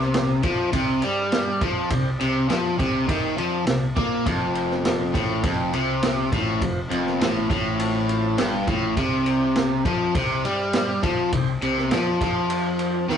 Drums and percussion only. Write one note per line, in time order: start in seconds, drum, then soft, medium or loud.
0.00 snare soft
0.14 snare loud
0.14 ride medium
0.43 kick loud
0.43 ride medium
0.73 kick loud
0.73 ride medium
1.02 ride medium
1.32 snare loud
1.32 ride medium
1.61 kick loud
1.61 ride medium
1.90 kick medium
1.90 ride medium
2.20 ride medium
2.50 snare loud
2.50 ride medium
2.79 kick loud
2.79 ride medium
3.09 kick loud
3.09 ride medium
3.38 ride medium
3.67 snare loud
3.67 ride medium
3.96 kick loud
3.96 ride medium
4.26 kick loud
4.26 ride medium
4.55 ride medium
4.71 snare soft
4.85 snare loud
4.85 ride medium
5.14 kick medium
5.14 ride medium
5.43 kick loud
5.43 ride medium
5.73 ride medium
6.03 snare loud
6.03 ride medium
6.32 kick medium
6.32 ride medium
6.61 kick medium
6.61 ride medium
6.91 ride medium
7.07 snare soft
7.21 snare loud
7.21 ride medium
7.50 kick loud
7.50 ride medium
7.79 ride medium
8.09 ride medium
8.38 snare loud
8.38 ride medium
8.67 kick medium
8.67 ride medium
8.97 kick loud
8.97 ride medium
9.26 ride medium
9.55 snare loud
9.55 ride medium
9.85 kick loud
9.85 ride medium
10.15 kick loud
10.15 ride medium
10.45 ride medium
10.73 snare loud
10.73 ride medium
11.03 kick loud
11.03 ride medium
11.32 kick medium
11.32 ride medium
11.62 ride medium
11.78 snare soft
11.91 snare loud
11.91 ride medium
12.21 kick loud
12.21 ride medium
12.50 ride medium
12.79 ride medium
13.09 snare medium